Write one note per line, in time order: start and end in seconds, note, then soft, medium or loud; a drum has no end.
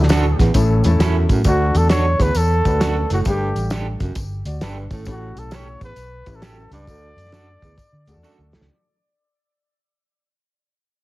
0.00 0.33 D2 loud
0.00 0.35 A2 medium
0.00 0.38 A3 medium
0.00 0.38 D4 medium
0.00 0.38 F#4 medium
0.00 0.39 A4 medium
0.00 snare soft
0.09 0.24 D4 medium
0.09 0.24 F#4 medium
0.09 0.25 A4 medium
0.09 snare loud
0.09 closed hi-hat medium
0.09 tambourine medium
0.39 0.52 A1 medium
0.39 0.52 E2 medium
0.39 kick medium
0.39 snare soft
0.39 closed hi-hat medium
0.39 tambourine medium
0.54 0.80 A1 medium
0.54 1.26 A2 medium
0.54 0.78 A3 medium
0.54 0.79 C#4 medium
0.54 0.79 E4 medium
0.54 0.79 A4 medium
0.54 kick medium
0.54 closed hi-hat medium
0.54 tambourine medium
0.84 0.98 E2 medium
0.84 1.33 A3 medium
0.84 1.33 C#4 medium
0.84 1.34 E4 medium
0.84 1.34 A4 medium
0.84 closed hi-hat medium
0.84 tambourine medium
1.00 1.24 F#2 medium
1.00 1.14 C#4 medium
1.00 1.15 E4 medium
1.00 1.15 A4 loud
1.00 snare loud
1.00 closed hi-hat medium
1.00 tambourine medium
1.29 1.42 F#2 medium
1.29 1.43 A2 medium
1.29 kick medium
1.29 closed hi-hat medium
1.29 tambourine medium
1.44 1.68 D2 medium
1.44 1.70 D2 loud
1.44 2.16 D3 medium
1.44 2.19 A3 medium
1.44 2.19 D4 medium
1.44 2.19 F#4 medium
1.44 1.78 F#4 medium
1.44 2.19 A4 medium
1.44 kick loud
1.44 closed hi-hat medium
1.44 tambourine loud
1.75 2.13 E2 medium
1.75 1.90 A4 medium
1.75 closed hi-hat medium
1.75 tambourine medium
1.89 2.04 D4 medium
1.89 2.05 F#4 medium
1.89 2.05 A4 loud
1.89 2.23 C#5 loud
1.89 snare loud
1.89 closed hi-hat medium
1.89 tambourine medium
2.19 2.33 D2 medium
2.19 2.32 E2 medium
2.19 2.38 B4 loud
2.19 kick medium
2.19 snare soft
2.19 closed hi-hat medium
2.19 tambourine medium
2.35 2.60 E2 medium
2.35 3.11 A4 loud
2.35 closed hi-hat medium
2.35 tambourine loud
2.65 3.04 D2 medium
2.65 3.14 A3 medium
2.65 3.14 D4 medium
2.65 3.14 F#4 medium
2.65 3.14 B4 medium
2.65 kick medium
2.65 closed hi-hat medium
2.65 tambourine medium
2.80 3.04 F#2 medium
2.80 2.95 D4 medium
2.80 2.95 F#4 medium
2.80 2.96 A4 loud
2.80 snare loud
2.80 closed hi-hat medium
2.80 tambourine medium
3.10 3.23 F#1 medium
3.10 3.23 A2 medium
3.10 3.19 F#4 medium
3.10 closed hi-hat medium
3.10 tambourine soft
3.25 3.51 G1 loud
3.25 3.50 G2 medium
3.25 3.97 G2 medium
3.25 4.00 A3 medium
3.25 4.00 D4 medium
3.25 4.00 G4 medium
3.25 3.69 G4 medium
3.25 3.34 G#4 medium
3.25 kick loud
3.25 closed hi-hat medium
3.25 tambourine loud
3.33 4.03 A4 medium
3.55 3.94 A1 medium
3.55 closed hi-hat medium
3.55 tambourine medium
3.70 3.85 D4 medium
3.70 3.86 G4 medium
3.70 3.86 A4 medium
3.70 snare medium
3.70 closed hi-hat medium
3.70 tambourine loud
4.00 4.13 F#1 medium
4.00 4.13 F#2 medium
4.00 kick medium
4.00 closed hi-hat medium
4.00 tambourine soft
4.15 4.41 G1 medium
4.15 kick medium
4.15 closed hi-hat medium
4.15 tambourine medium
4.45 4.59 D2 medium
4.45 4.61 F#4 medium
4.45 4.61 D5 medium
4.45 closed hi-hat medium
4.45 tambourine medium
4.61 4.86 G1 medium
4.61 4.85 G2 medium
4.61 4.76 D4 medium
4.61 4.90 D4 medium
4.61 4.76 G4 medium
4.61 4.77 A4 medium
4.61 4.90 B4 medium
4.61 snare loud
4.61 closed hi-hat medium
4.61 tambourine medium
4.91 5.04 G#1 medium
4.91 5.04 A2 medium
4.91 5.05 C#4 medium
4.91 5.06 A4 medium
4.91 kick medium
4.91 closed hi-hat medium
4.91 tambourine medium
5.05 5.32 A1 loud
5.05 5.30 A2 medium
5.05 5.78 A2 medium
5.05 5.80 C#4 medium
5.05 5.81 E4 medium
5.05 5.81 G4 medium
5.05 5.81 A4 medium
5.05 kick loud
5.05 closed hi-hat medium
5.05 tambourine medium
5.11 5.40 F#4 medium
5.35 5.74 B1 medium
5.35 5.56 A4 medium
5.35 closed hi-hat medium
5.35 tambourine medium
5.51 5.66 C#4 medium
5.51 5.67 G4 medium
5.51 5.67 A4 medium
5.51 5.83 C#5 medium
5.51 snare medium
5.51 closed hi-hat medium
5.51 tambourine medium
5.81 5.94 A1 medium
5.81 5.93 E2 medium
5.81 6.37 B4 loud
5.81 kick medium
5.81 closed hi-hat medium
5.81 tambourine medium
5.96 6.22 B1 medium
5.96 closed hi-hat medium
5.96 tambourine medium
6.26 6.65 A1 medium
6.26 6.75 C#4 medium
6.26 6.75 E4 medium
6.26 6.76 G4 medium
6.26 6.76 B4 medium
6.26 kick medium
6.26 closed hi-hat medium
6.26 tambourine soft
6.35 6.72 A4 medium
6.42 6.66 F#2 medium
6.42 6.56 C#4 medium
6.42 6.57 G4 medium
6.42 6.57 A4 medium
6.42 snare loud
6.42 closed hi-hat medium
6.42 tambourine medium
6.71 6.84 C#2 medium
6.71 6.84 G2 medium
6.71 8.50 D5 loud
6.71 closed hi-hat medium
6.71 tambourine soft
6.87 7.13 D2 loud
6.87 7.12 D2 medium
6.87 7.58 D3 medium
6.87 7.61 A3 medium
6.87 7.61 D4 medium
6.87 7.61 F#4 medium
6.87 7.62 A4 medium
6.87 kick loud
6.87 closed hi-hat medium
6.87 tambourine loud
7.16 7.55 F#2 loud
7.16 closed hi-hat medium
7.16 tambourine medium
7.25 snare soft
7.32 7.47 D4 medium
7.32 7.47 F#4 medium
7.32 7.48 A4 loud
7.32 snare loud
7.32 closed hi-hat medium
7.32 tambourine medium
7.62 7.75 D2 medium
7.62 7.75 E2 medium
7.62 kick medium
7.62 closed hi-hat medium
7.62 tambourine medium
7.78 kick medium
7.78 closed hi-hat medium
7.78 tambourine medium
7.92 8.05 D3 medium
8.07 8.14 D2 medium
8.07 8.56 A3 medium
8.07 8.56 D4 medium
8.07 8.57 F#4 medium
8.07 8.12 G#4 medium
8.07 closed hi-hat medium
8.07 tambourine medium
8.14 8.22 E2 medium
8.14 8.59 A4 medium
8.23 8.47 F#2 medium
8.23 8.38 D4 medium
8.23 8.38 F#4 medium
8.23 8.38 A4 medium
8.23 tambourine medium
8.38 8.51 D2 medium
8.53 8.66 A2 medium
8.53 snare medium
8.53 tambourine soft
8.60 8.67 C#2 medium
8.60 snare medium